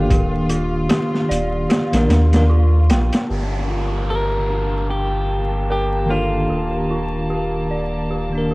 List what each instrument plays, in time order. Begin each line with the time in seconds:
Already playing: tine electric piano D#3 A#3 D4 G4, synth bell D4 A4 A#4 G5, violin section F4
0.10 sub bass D#1, synth bell G4, kick, closed hi-hat
0.49 synth bell F4, closed hi-hat
0.89 synth bell G4, snare, closed hi-hat
1.14 snare
1.29 sub bass D#1, synth bell D5, closed hi-hat
1.69 synth bell G4, snare, closed hi-hat
1.92 sub bass A#1, tine electric piano D#3 A#3 D4, snare, closed hi-hat
1.96 tine electric piano A#4
2.10 sub bass D#2, synth bell D4, snare, closed hi-hat
2.32 tine electric piano D#3 A#3 D4, snare, closed hi-hat
2.36 tine electric piano A#4
2.50 synth bell F4
2.90 sub bass A#1, synth bell G5, snare, closed hi-hat
3.13 snare, closed hi-hat
3.29 sub bass G1, violin section A#3 A5, synth bell G4, downlifter
3.70 synth bell F4
4.10 synth bell G4, clean electric guitar A#4
4.50 synth bell D4
4.89 clean electric guitar G4, synth bell G5
5.29 synth bell G5
5.70 clean electric guitar G4, synth bell A#4
6.06 tine electric piano D#3 A#3, synth bell A4
6.11 tine electric piano D4 G4, clean electric guitar F4
6.50 sub bass D#1, synth bell G4
6.90 synth bell F4
7.30 synth bell G4
7.71 synth bell D5
8.11 synth bell G4
8.30 tine electric piano D#3 A#3
8.35 tine electric piano D4 A#4
8.51 synth bell G4